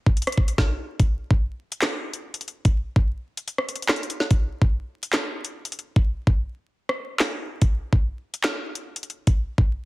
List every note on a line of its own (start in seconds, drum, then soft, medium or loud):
0.06 kick medium
0.17 closed hi-hat soft
0.22 closed hi-hat medium
0.27 cross-stick loud
0.27 closed hi-hat medium
0.32 closed hi-hat medium
0.37 kick loud
0.48 closed hi-hat medium
0.58 kick loud
0.58 snare medium
1.00 kick loud
1.00 closed hi-hat medium
1.31 kick loud
1.72 closed hi-hat medium
1.82 snare loud
1.82 clap loud
1.82 closed hi-hat medium
2.13 closed hi-hat medium
2.34 closed hi-hat medium
2.41 closed hi-hat medium
2.48 closed hi-hat soft
2.65 kick loud
2.65 closed hi-hat medium
2.96 kick loud
3.37 closed hi-hat medium
3.48 closed hi-hat medium
3.58 cross-stick loud
3.69 closed hi-hat medium
3.75 closed hi-hat medium
3.82 closed hi-hat medium
3.88 snare loud
3.88 clap medium
3.88 closed hi-hat medium
3.96 closed hi-hat medium
4.03 closed hi-hat soft
4.10 closed hi-hat medium
4.20 snare medium
4.31 kick loud
4.31 closed hi-hat medium
4.62 kick loud
5.03 closed hi-hat medium
5.13 snare loud
5.13 clap loud
5.13 closed hi-hat medium
5.44 closed hi-hat medium
5.65 closed hi-hat medium
5.72 closed hi-hat medium
5.79 closed hi-hat soft
5.96 kick loud
6.27 kick loud
6.89 cross-stick loud
7.19 snare loud
7.19 clap medium
7.61 kick loud
7.61 closed hi-hat medium
7.93 kick loud
8.34 closed hi-hat medium
8.44 snare loud
8.44 clap loud
8.44 closed hi-hat medium
8.75 closed hi-hat medium
8.96 closed hi-hat medium
9.03 closed hi-hat medium
9.10 closed hi-hat soft
9.27 kick loud
9.27 closed hi-hat medium
9.58 kick loud